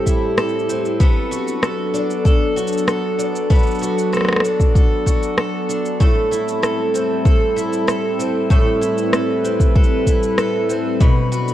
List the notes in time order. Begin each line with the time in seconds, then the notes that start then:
Already playing: A2 G3 C4 E4 G4 A4
0.06 E4, kick, shaker
0.37 A4, cross-stick, shaker
0.49 shaker
0.59 shaker
0.69 C4, shaker
0.85 shaker
1.00 F#3 B3 D4 A4, kick, shaker
1.31 F#4, shaker
1.48 shaker
1.63 A4, cross-stick, shaker
1.94 D4, shaker
2.10 shaker
2.25 A4, kick, shaker
2.56 F#4, shaker
2.67 shaker
2.72 shaker
2.78 shaker
2.87 A4, cross-stick, shaker
3.19 D4, shaker
3.35 shaker
3.50 B3 A4, kick, shaker
3.55 shaker
3.59 shaker
3.63 shaker
3.67 shaker
3.71 shaker
3.75 shaker
3.79 F#4, shaker
3.83 shaker
3.98 shaker
4.13 A4, cross-stick, shaker
4.17 cross-stick
4.21 cross-stick
4.25 cross-stick
4.28 cross-stick
4.33 cross-stick
4.36 cross-stick
4.40 D4, cross-stick
4.45 shaker
4.60 kick, shaker
4.75 A4, kick, shaker
5.06 F#4, kick, shaker
5.23 shaker
5.38 A4, cross-stick
5.69 D4, shaker
5.85 shaker
6.00 A2 G3 C4 E4 A4, kick, shaker
6.31 E4, shaker
6.48 shaker
6.63 A4, cross-stick, shaker
6.94 C4, shaker
7.25 A4, kick, shaker
7.56 E4, shaker
7.73 shaker
7.87 A4, cross-stick, shaker
8.19 C4, shaker
8.50 A2 A4 B4, kick, shaker
8.81 E4, shaker
8.98 shaker
9.13 A4, cross-stick, shaker
9.44 C4, shaker
9.60 kick, shaker
9.76 A4, kick
9.84 shaker
10.07 E4, kick, shaker
10.23 shaker
10.38 A4, cross-stick, shaker
10.69 C4, shaker
11.00 B2 F#3 B3 D4 A4 B4, kick, shaker
11.32 F#4, shaker
11.48 shaker